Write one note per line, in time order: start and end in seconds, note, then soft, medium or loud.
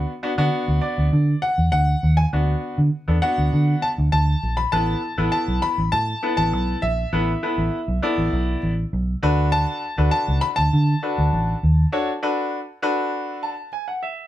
0.00 0.11 B3 medium
0.00 0.11 D4 medium
0.00 0.11 F#4 medium
0.23 0.32 B3 medium
0.23 0.32 D4 medium
0.23 0.32 F#4 loud
0.38 0.48 D3 medium
0.38 1.07 B3 loud
0.38 1.07 D4 medium
0.38 1.07 F#4 loud
0.68 0.78 D2 medium
0.81 1.44 D5 medium
0.98 1.08 D2 medium
1.13 1.34 D3 loud
1.42 1.70 F#5 loud
1.58 1.68 E2 medium
1.72 1.94 D2 loud
1.72 2.19 F#5 loud
2.03 2.24 D#2 loud
2.17 2.24 G#5 loud
2.33 2.54 D2 loud
2.33 2.76 B3 medium
2.33 2.76 D4 medium
2.33 2.76 F#4 medium
2.78 2.88 D3 loud
3.08 3.18 E2 loud
3.08 3.16 B3 medium
3.08 3.17 D4 medium
3.08 3.17 A4 medium
3.22 3.92 B3 medium
3.22 3.92 D4 medium
3.22 3.92 F#4 medium
3.22 3.84 F#5 loud
3.38 3.48 D2 medium
3.53 3.74 D3 loud
3.82 3.89 A5 loud
3.98 4.09 D2 loud
4.12 4.34 D2 loud
4.12 4.59 A5 loud
4.43 4.64 A#1 medium
4.57 4.85 B5 loud
4.72 4.94 A1 loud
4.72 4.99 B3 medium
4.72 4.99 E4 medium
4.72 4.99 A4 medium
4.72 4.99 B4 medium
4.72 5.30 A5 loud
5.18 5.28 A1 medium
5.18 5.78 B3 medium
5.18 5.78 E4 medium
5.18 5.78 A4 medium
5.18 5.78 B4 medium
5.32 5.63 A5 loud
5.48 5.58 B1 loud
5.62 5.91 B5 loud
5.78 5.88 A1 loud
5.92 6.14 A2 loud
5.92 6.36 A5 loud
6.23 6.74 B3 medium
6.23 6.75 E4 medium
6.23 6.75 A4 medium
6.23 6.75 B4 medium
6.37 6.53 A1 loud
6.37 6.79 A5 loud
6.53 6.74 B1 loud
6.82 7.04 A#1 loud
6.82 8.59 E5 loud
7.13 7.34 A1 loud
7.13 7.30 B3 medium
7.13 7.30 E4 medium
7.13 7.30 A4 medium
7.13 7.30 B4 medium
7.43 7.77 B3 medium
7.43 7.77 E4 medium
7.43 7.77 A4 medium
7.43 7.78 B4 medium
7.58 7.68 A1 loud
7.88 7.98 B1 loud
8.02 8.72 B3 medium
8.02 8.72 E4 medium
8.02 8.72 A4 medium
8.02 8.72 D5 loud
8.18 8.28 A1 loud
8.33 8.54 B1 loud
8.63 8.84 A1 medium
8.93 9.14 B1 medium
9.23 9.65 D2 loud
9.23 9.83 D4 loud
9.23 9.83 F#4 medium
9.23 9.83 A4 medium
9.23 9.83 B4 loud
9.52 10.09 A5 loud
9.98 10.08 D2 loud
9.98 10.58 D4 medium
9.98 10.58 F#4 medium
9.98 10.58 A4 medium
9.98 10.58 B4 medium
10.11 10.43 A5 loud
10.28 10.39 C#2 loud
10.41 10.46 B5 loud
10.56 10.69 D2 loud
10.56 13.68 A5 loud
10.73 10.94 D3 loud
11.03 11.54 D4 medium
11.03 11.55 F#4 medium
11.03 11.55 A4 medium
11.03 11.55 B4 medium
11.18 11.29 D2 medium
11.33 11.54 A1 loud
11.63 11.84 D#2 loud
11.92 12.10 D4 loud
11.92 12.10 F#4 medium
11.92 12.10 A4 medium
11.92 12.10 C#5 loud
12.23 12.57 D4 medium
12.23 12.57 F#4 medium
12.23 12.57 A4 medium
12.23 12.57 B4 loud
12.82 13.52 D4 medium
12.82 13.52 F#4 medium
12.82 13.52 A4 medium
12.82 13.52 B4 loud
13.43 13.71 A5 medium
13.73 13.87 G#5 medium
13.88 14.02 F#5 medium
14.03 14.27 E5 medium